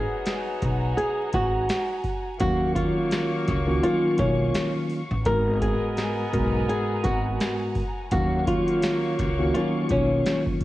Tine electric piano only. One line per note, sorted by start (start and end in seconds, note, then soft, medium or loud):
2.40 3.56 D#3 loud
2.40 3.57 F#3 loud
2.40 3.56 A#3 medium
2.40 3.56 C#4 medium
2.40 3.57 F5 medium
3.67 3.83 D#3 medium
3.67 3.83 A#3 medium
3.67 3.84 C#4 medium
3.67 3.84 F4 medium
3.67 3.86 F#4 loud
3.84 5.00 D#3 medium
3.84 5.00 F#3 loud
3.84 5.00 A#3 medium
3.84 5.00 C#4 medium
3.84 5.00 F4 medium
5.25 6.25 G#2 medium
5.25 6.25 G#3 medium
5.25 6.25 B3 medium
5.25 6.26 F#4 medium
5.25 6.26 A#4 loud
6.33 7.81 G#2 medium
6.33 7.81 G#3 medium
6.33 7.82 B3 medium
6.33 7.82 F#4 medium
6.33 7.82 A#4 loud
8.12 9.28 D#3 medium
8.12 9.28 F#3 loud
8.12 9.28 A#3 medium
8.12 9.28 C#4 medium
8.12 9.28 F5 medium
9.38 9.55 D#3 loud
9.38 9.55 A#3 medium
9.38 9.55 C#4 medium
9.38 9.55 F4 medium
9.38 9.57 F#4 loud
9.56 10.64 D#3 medium
9.56 10.64 F#3 loud
9.56 10.64 A#3 medium
9.56 10.64 C#4 medium
9.56 10.64 F4 medium